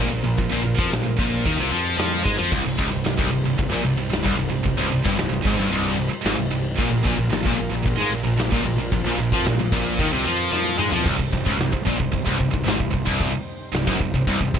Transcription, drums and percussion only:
0.12 ride medium
0.38 kick medium
0.38 ride loud
0.65 ride medium
0.79 kick loud
0.93 snare loud
0.93 ride loud
1.19 kick loud
1.19 ride medium
1.46 kick loud
1.46 ride loud
1.72 ride medium
1.99 snare loud
1.99 ride loud
2.26 kick loud
2.26 ride medium
2.52 kick loud
2.52 crash loud
2.79 kick loud
2.79 ride medium
3.05 snare loud
3.05 ride loud
3.19 kick loud
3.33 ride medium
3.59 kick loud
3.59 ride loud
3.86 ride medium
4.13 snare loud
4.13 ride loud
4.26 kick loud
4.40 ride medium
4.66 kick medium
4.66 ride loud
4.92 ride medium
5.06 kick loud
5.18 snare loud
5.18 ride loud
5.45 kick loud
5.45 ride medium
5.72 ride loud
5.98 ride medium
6.25 snare loud
6.25 ride loud
6.51 ride medium
6.78 kick loud
6.78 ride loud
7.05 kick loud
7.05 ride medium
7.32 snare loud
7.32 ride loud
7.46 kick loud
7.59 ride medium
7.86 kick loud
7.86 ride loud
8.12 ride medium
8.39 snare loud
8.39 ride loud
8.52 kick loud
8.65 ride medium
8.92 kick loud
8.92 ride loud
9.19 ride medium
9.32 kick loud
9.46 snare loud
9.46 ride loud
9.72 kick loud
9.72 ride medium
9.99 kick loud
9.99 ride loud
10.26 ride medium
10.54 snare medium
10.79 mid tom loud
10.92 floor tom medium
11.06 kick loud
11.06 crash loud
11.19 kick medium
11.33 kick medium
11.33 open hi-hat medium
11.46 kick medium
11.60 snare loud
11.60 open hi-hat medium
11.73 kick loud
11.87 kick medium
11.87 open hi-hat medium
12.00 kick medium
12.14 kick loud
12.14 open hi-hat medium
12.27 kick medium
12.40 kick medium
12.40 open hi-hat medium
12.54 kick medium
12.67 snare loud
12.67 open hi-hat medium
12.80 kick medium
12.94 kick medium
12.94 open hi-hat medium
13.07 kick medium
13.21 kick loud
13.21 open hi-hat medium
13.48 open hi-hat medium
13.74 snare loud
13.74 open hi-hat medium
13.87 kick loud
14.00 kick medium
14.00 open hi-hat medium
14.14 kick medium
14.27 kick loud
14.27 open hi-hat medium
14.41 kick medium
14.54 kick medium
14.54 open hi-hat medium

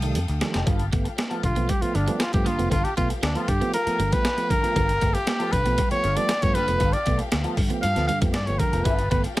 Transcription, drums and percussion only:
0.02 closed hi-hat medium
0.15 closed hi-hat medium
0.28 closed hi-hat soft
0.41 snare loud
0.41 closed hi-hat medium
0.54 snare loud
0.54 closed hi-hat medium
0.67 kick loud
0.67 closed hi-hat medium
0.79 closed hi-hat soft
0.93 kick medium
0.93 closed hi-hat medium
1.05 closed hi-hat medium
1.18 snare loud
1.18 closed hi-hat medium
1.31 closed hi-hat soft
1.43 kick medium
1.43 closed hi-hat medium
1.56 closed hi-hat medium
1.69 kick medium
1.69 closed hi-hat loud
1.82 closed hi-hat medium
1.95 closed hi-hat medium
2.08 closed hi-hat medium
2.20 snare loud
2.20 closed hi-hat medium
2.33 kick loud
2.33 closed hi-hat medium
2.46 closed hi-hat medium
2.59 closed hi-hat medium
2.71 kick loud
2.71 closed hi-hat medium
2.85 closed hi-hat soft
2.97 kick medium
2.97 closed hi-hat medium
3.10 closed hi-hat medium
3.23 snare loud
3.23 closed hi-hat medium
3.35 closed hi-hat medium
3.48 kick medium
3.48 closed hi-hat medium
3.62 closed hi-hat medium
3.74 closed hi-hat loud
3.87 closed hi-hat medium
4.00 closed hi-hat medium
4.12 kick loud
4.12 closed hi-hat medium
4.25 snare loud
4.25 closed hi-hat medium
4.38 closed hi-hat medium
4.50 kick medium
4.50 closed hi-hat medium
4.64 closed hi-hat medium
4.76 kick loud
4.76 closed hi-hat medium
4.89 closed hi-hat soft
5.01 kick medium
5.01 closed hi-hat medium
5.15 closed hi-hat medium
5.27 snare loud
5.27 closed hi-hat medium
5.40 closed hi-hat medium
5.53 kick medium
5.53 closed hi-hat medium
5.66 closed hi-hat medium
5.78 kick loud
5.78 closed hi-hat medium
5.91 closed hi-hat medium
6.04 closed hi-hat medium
6.17 closed hi-hat medium
6.29 snare loud
6.29 closed hi-hat loud
6.42 kick medium
6.42 closed hi-hat medium
6.55 closed hi-hat medium
6.68 closed hi-hat medium
6.80 kick loud
6.80 closed hi-hat medium
6.93 closed hi-hat soft
7.06 kick medium
7.06 closed hi-hat medium
7.19 closed hi-hat medium
7.32 snare loud
7.32 closed hi-hat medium
7.44 closed hi-hat medium
7.57 kick medium
7.57 open hi-hat medium
7.70 closed hi-hat medium
7.83 closed hi-hat medium
7.96 snare soft
7.96 closed hi-hat medium
8.09 closed hi-hat medium
8.22 kick loud
8.22 closed hi-hat medium
8.34 snare loud
8.34 closed hi-hat medium
8.47 closed hi-hat soft
8.59 kick medium
8.59 closed hi-hat medium
8.73 closed hi-hat medium
8.85 kick loud
8.85 closed hi-hat medium
8.99 closed hi-hat soft
9.11 kick medium
9.11 closed hi-hat medium
9.24 closed hi-hat medium
9.37 closed hi-hat medium

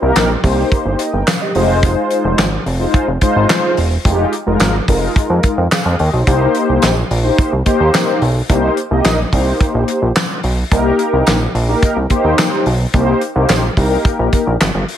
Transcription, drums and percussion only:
0.16 snare loud
0.16 clap medium
0.16 closed hi-hat medium
0.16 tambourine medium
0.44 kick medium
0.44 open hi-hat medium
0.72 kick loud
0.72 closed hi-hat medium
0.99 closed hi-hat medium
1.27 snare loud
1.27 clap loud
1.27 closed hi-hat medium
1.27 tambourine medium
1.55 open hi-hat medium
1.83 kick loud
1.83 closed hi-hat medium
2.11 closed hi-hat medium
2.38 snare loud
2.38 clap medium
2.38 closed hi-hat medium
2.38 tambourine medium
2.66 open hi-hat medium
2.94 kick loud
2.94 closed hi-hat medium
3.21 kick medium
3.21 closed hi-hat medium
3.49 snare loud
3.49 clap loud
3.49 closed hi-hat medium
3.49 tambourine medium
3.77 open hi-hat medium
4.05 kick loud
4.05 closed hi-hat loud
4.33 closed hi-hat medium
4.60 snare loud
4.60 clap medium
4.60 closed hi-hat medium
4.60 tambourine medium
4.88 kick medium
4.88 open hi-hat medium
5.16 kick loud
5.16 closed hi-hat medium
5.43 kick medium
5.43 closed hi-hat medium
5.71 snare loud
5.71 clap loud
5.71 closed hi-hat medium
5.71 tambourine loud
5.99 open hi-hat medium
6.27 kick loud
6.27 closed hi-hat loud
6.55 closed hi-hat medium
6.82 snare loud
6.82 clap medium
6.82 closed hi-hat medium
6.82 tambourine medium
7.11 open hi-hat medium
7.38 kick loud
7.38 closed hi-hat medium
7.66 kick medium
7.66 closed hi-hat medium
7.94 snare loud
7.94 clap loud
7.94 closed hi-hat medium
7.94 tambourine medium
8.22 open hi-hat medium
8.50 kick loud
8.50 closed hi-hat loud
8.77 closed hi-hat medium
9.04 snare loud
9.04 clap medium
9.04 closed hi-hat medium
9.04 tambourine medium
9.33 kick medium
9.33 open hi-hat medium
9.61 kick loud
9.61 closed hi-hat medium
9.88 closed hi-hat medium
10.16 snare loud
10.16 clap loud
10.16 closed hi-hat medium
10.16 tambourine medium
10.43 open hi-hat medium
10.72 kick loud
10.72 closed hi-hat loud
10.99 closed hi-hat medium
11.27 snare loud
11.27 clap medium
11.27 closed hi-hat medium
11.27 tambourine medium
11.55 open hi-hat medium
11.83 kick loud
11.83 closed hi-hat medium
12.10 kick medium
12.10 closed hi-hat medium
12.38 snare loud
12.38 clap loud
12.38 closed hi-hat medium
12.38 tambourine medium
12.66 open hi-hat medium
12.94 kick loud
12.94 closed hi-hat medium
13.21 closed hi-hat medium
13.49 snare loud
13.49 clap medium
13.49 closed hi-hat medium
13.49 tambourine medium
13.77 kick medium
13.77 open hi-hat medium
14.05 kick loud
14.05 closed hi-hat medium
14.33 kick medium
14.33 closed hi-hat medium
14.61 snare loud
14.61 clap loud
14.61 closed hi-hat medium
14.61 tambourine loud
14.88 open hi-hat medium

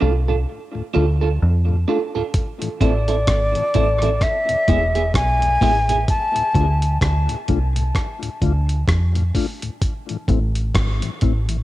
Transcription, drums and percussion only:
2.34 kick loud
2.34 closed hi-hat medium
2.62 closed hi-hat medium
2.81 kick loud
2.81 closed hi-hat medium
3.08 closed hi-hat medium
3.27 kick loud
3.27 cross-stick loud
3.27 closed hi-hat medium
3.55 closed hi-hat medium
3.74 kick medium
3.74 closed hi-hat medium
4.02 closed hi-hat medium
4.21 kick loud
4.21 cross-stick medium
4.21 closed hi-hat medium
4.49 closed hi-hat soft
4.68 kick medium
4.68 closed hi-hat medium
4.95 closed hi-hat soft
5.14 kick loud
5.14 cross-stick loud
5.14 closed hi-hat medium
5.42 closed hi-hat medium
5.61 kick medium
5.61 open hi-hat medium
5.89 closed hi-hat medium
6.08 kick loud
6.08 closed hi-hat medium
6.36 closed hi-hat medium
6.54 kick medium
6.54 closed hi-hat medium
6.82 closed hi-hat medium
7.01 kick loud
7.01 cross-stick loud
7.01 closed hi-hat medium
7.29 closed hi-hat medium
7.48 kick medium
7.48 closed hi-hat medium
7.76 closed hi-hat medium
7.95 kick medium
7.95 cross-stick medium
7.95 closed hi-hat medium
8.23 closed hi-hat soft
8.42 kick medium
8.42 closed hi-hat medium
8.69 closed hi-hat soft
8.88 kick loud
8.88 cross-stick loud
8.88 closed hi-hat medium
9.15 closed hi-hat medium
9.35 kick medium
9.35 open hi-hat medium
9.62 closed hi-hat medium
9.82 kick loud
9.82 closed hi-hat loud
10.09 closed hi-hat soft
10.28 kick medium
10.28 closed hi-hat medium
10.55 closed hi-hat medium
10.75 kick loud
10.75 cross-stick medium
10.75 closed hi-hat medium
11.02 closed hi-hat medium
11.21 kick medium
11.21 closed hi-hat medium
11.49 closed hi-hat medium

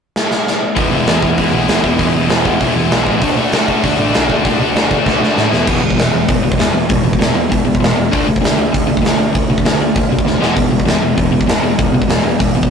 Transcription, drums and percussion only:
0.16 snare medium
0.31 snare medium
0.47 snare medium
0.76 kick loud
0.76 open hi-hat medium
1.07 snare loud
1.07 open hi-hat soft
1.22 kick medium
1.37 kick medium
1.37 open hi-hat medium
1.68 snare loud
1.68 open hi-hat medium
1.84 kick medium
1.99 kick loud
1.99 open hi-hat medium
2.29 snare loud
2.29 open hi-hat medium
2.45 kick medium
2.61 kick medium
2.61 open hi-hat soft
2.91 snare loud
2.91 open hi-hat soft
3.07 kick medium
3.21 kick loud
3.21 open hi-hat medium
3.52 snare loud
3.52 open hi-hat medium
3.68 kick medium
3.84 kick medium
3.84 open hi-hat medium
4.14 snare loud
4.14 open hi-hat soft
4.30 kick medium
4.45 kick loud
4.45 open hi-hat medium
4.76 snare loud
4.76 open hi-hat soft
4.91 kick medium
5.06 kick medium
5.06 snare medium
5.23 snare medium
5.37 snare medium
5.53 snare medium
5.67 kick loud
5.67 crash loud
5.90 kick medium
5.99 snare loud
5.99 open hi-hat medium
6.28 kick loud
6.28 open hi-hat medium
6.52 kick medium
6.59 snare loud
6.59 open hi-hat medium
6.89 kick loud
6.89 open hi-hat medium
7.13 kick medium
7.21 snare loud
7.21 open hi-hat medium
7.52 kick loud
7.52 open hi-hat medium
7.75 kick medium
7.83 snare medium
7.83 open hi-hat medium
8.13 kick loud
8.13 open hi-hat medium
8.36 kick medium
8.44 snare loud
8.44 open hi-hat medium
8.74 kick medium
8.74 open hi-hat medium
8.97 kick medium
9.05 snare loud
9.05 open hi-hat medium
9.35 kick loud
9.35 open hi-hat medium
9.58 kick medium
9.65 snare loud
9.65 open hi-hat medium
9.96 kick loud
9.96 open hi-hat soft
10.19 kick medium
10.27 snare medium
10.42 snare medium
10.57 kick loud
10.57 open hi-hat medium
10.80 kick medium
10.87 snare medium
10.87 open hi-hat soft
11.18 kick loud
11.18 open hi-hat medium
11.41 kick medium
11.48 snare loud
11.48 open hi-hat medium
11.79 kick loud
11.79 open hi-hat medium
12.02 kick medium
12.09 snare loud
12.09 open hi-hat medium
12.40 kick loud
12.40 open hi-hat medium
12.63 kick medium

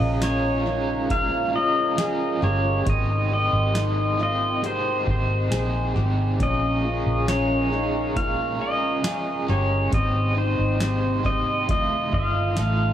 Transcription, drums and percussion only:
0.22 snare loud
0.22 closed hi-hat medium
1.10 kick medium
1.10 closed hi-hat medium
1.98 snare loud
1.98 closed hi-hat medium
2.87 kick loud
2.87 closed hi-hat medium
3.75 snare medium
3.75 closed hi-hat medium
4.64 closed hi-hat medium
5.07 kick medium
5.52 snare loud
5.52 closed hi-hat medium
6.40 kick loud
6.40 closed hi-hat medium
7.28 snare medium
7.28 closed hi-hat medium
8.16 kick medium
8.16 closed hi-hat medium
9.04 snare loud
9.04 closed hi-hat medium
9.93 kick loud
9.93 closed hi-hat medium
10.80 snare loud
10.80 closed hi-hat medium
11.25 kick medium
11.69 kick medium
11.69 closed hi-hat medium
12.13 kick medium
12.57 snare medium
12.57 closed hi-hat medium

